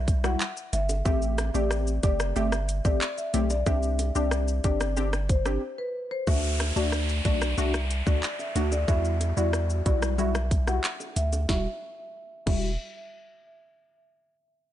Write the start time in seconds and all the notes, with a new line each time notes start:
Already playing: B1
0.08 kick, closed hi-hat, shaker
0.24 G3 E4 F#4 F#5, cross-stick, shaker
0.41 clap, shaker
0.57 shaker
0.73 G1 E5, closed hi-hat, low bongo, shaker
0.89 high bongo, shaker
1.05 A1 A3 C4 G4 E5, kick, high bongo, shaker
1.22 shaker
1.38 cross-stick, closed hi-hat, high bongo, shaker
1.54 A1 A3 C4 G4 D5, shaker
1.71 cross-stick, shaker
1.87 shaker
2.03 F#1 A3 C4 G4 D5, kick, closed hi-hat, shaker
2.20 cross-stick, shaker
2.36 G1 A3 C4 G4 E5, high bongo, shaker
2.52 cross-stick, shaker
2.69 closed hi-hat, shaker
2.85 A1 A3 C4 G4 D5, kick, shaker
3.01 clap, shaker
3.18 E5, shaker
3.34 B1 A3 C4 G4, closed hi-hat, low bongo, shaker
3.50 D5, high bongo, shaker
3.66 C2 C4 D4 G4 E5, kick, high bongo, shaker
3.83 shaker
3.99 closed hi-hat, high bongo, shaker
4.15 C2 C4 D4 G4 D5, shaker
4.31 cross-stick, shaker
4.48 shaker
4.64 G1 C4 D4 G4 D5, kick, closed hi-hat, shaker
4.81 cross-stick, shaker
4.97 C4 D4 G4, high bongo, shaker
5.13 cross-stick, shaker
5.29 C5, kick, closed hi-hat, shaker
5.46 C4 D4 G4, cross-stick, shaker
5.78 B4
6.11 C5
6.27 D2 A3 D4 F#4 E5, kick, downlifter, high bongo, shaker
6.44 shaker
6.60 cross-stick, closed hi-hat, high bongo, shaker
6.76 D2 A3 D4 F#4 D5, shaker
6.92 cross-stick, shaker
7.09 shaker
7.25 B1 A3 D4 F#4 D5, kick, closed hi-hat, high bongo, shaker
7.42 cross-stick, shaker
7.58 C2 A3 D4 F#4 E5, high bongo, shaker
7.74 cross-stick, shaker
7.91 closed hi-hat, shaker
8.06 D2 A3 D4 F#4 D5, kick, shaker
8.23 clap, shaker
8.39 E5, high bongo, shaker
8.55 D2 A3 D4 F#4, closed hi-hat, low bongo, shaker
8.72 D5, high bongo, shaker
8.88 E2 G3 E4 F#4 E5, kick, high bongo, shaker
9.05 shaker
9.21 closed hi-hat, high bongo, shaker
9.37 E2 G3 E4 F#4 D5, shaker
9.53 cross-stick, shaker
9.70 shaker
9.86 B1 G3 E4 F#4 D5, kick, closed hi-hat, high bongo, shaker
10.02 cross-stick, shaker
10.18 G3 E4 F#4 E5, high bongo, shaker
10.35 cross-stick, shaker
10.51 kick, closed hi-hat, shaker
10.67 G3 E4 F#4 F#5, cross-stick, shaker
10.84 clap, shaker
11.00 high bongo, shaker
11.16 D2 E5, closed hi-hat, low bongo, shaker
11.33 high bongo, shaker
11.49 E1 G3 E4 F#4 E5, kick, snare, high bongo
12.46 E1 G3 E4 F#4 E5, kick, crash, high bongo